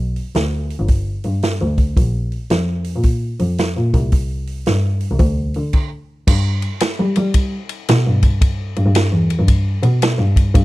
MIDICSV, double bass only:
0, 0, Header, 1, 2, 480
1, 0, Start_track
1, 0, Tempo, 536673
1, 1763, Time_signature, 4, 2, 24, 8
1, 9521, End_track
2, 0, Start_track
2, 0, Title_t, "Double bass"
2, 0, Program_c, 0, 43
2, 0, Note_on_c, 0, 35, 80
2, 117, Note_off_c, 0, 35, 0
2, 316, Note_on_c, 0, 38, 79
2, 600, Note_off_c, 0, 38, 0
2, 710, Note_on_c, 0, 31, 72
2, 930, Note_off_c, 0, 31, 0
2, 1115, Note_on_c, 0, 43, 74
2, 1266, Note_off_c, 0, 43, 0
2, 1444, Note_on_c, 0, 38, 77
2, 1735, Note_off_c, 0, 38, 0
2, 1761, Note_on_c, 0, 34, 83
2, 2046, Note_off_c, 0, 34, 0
2, 2243, Note_on_c, 0, 41, 82
2, 2607, Note_off_c, 0, 41, 0
2, 2646, Note_on_c, 0, 46, 73
2, 2863, Note_off_c, 0, 46, 0
2, 3040, Note_on_c, 0, 41, 77
2, 3335, Note_off_c, 0, 41, 0
2, 3371, Note_on_c, 0, 46, 85
2, 3511, Note_off_c, 0, 46, 0
2, 3523, Note_on_c, 0, 36, 83
2, 4137, Note_off_c, 0, 36, 0
2, 4176, Note_on_c, 0, 43, 82
2, 4458, Note_off_c, 0, 43, 0
2, 4571, Note_on_c, 0, 36, 80
2, 4642, Note_off_c, 0, 36, 0
2, 4647, Note_on_c, 0, 38, 94
2, 4934, Note_off_c, 0, 38, 0
2, 4976, Note_on_c, 0, 50, 73
2, 5048, Note_off_c, 0, 50, 0
2, 5612, Note_on_c, 0, 43, 84
2, 5895, Note_off_c, 0, 43, 0
2, 6257, Note_on_c, 0, 55, 87
2, 6394, Note_off_c, 0, 55, 0
2, 6413, Note_on_c, 0, 55, 80
2, 6560, Note_off_c, 0, 55, 0
2, 7057, Note_on_c, 0, 47, 93
2, 7194, Note_off_c, 0, 47, 0
2, 7215, Note_on_c, 0, 43, 78
2, 7807, Note_off_c, 0, 43, 0
2, 7844, Note_on_c, 0, 43, 76
2, 7917, Note_off_c, 0, 43, 0
2, 7923, Note_on_c, 0, 43, 89
2, 7997, Note_off_c, 0, 43, 0
2, 8161, Note_on_c, 0, 40, 79
2, 8301, Note_off_c, 0, 40, 0
2, 8399, Note_on_c, 0, 43, 80
2, 8614, Note_off_c, 0, 43, 0
2, 8791, Note_on_c, 0, 47, 95
2, 8941, Note_off_c, 0, 47, 0
2, 9108, Note_on_c, 0, 43, 84
2, 9401, Note_off_c, 0, 43, 0
2, 9434, Note_on_c, 0, 43, 101
2, 9521, Note_off_c, 0, 43, 0
2, 9521, End_track
0, 0, End_of_file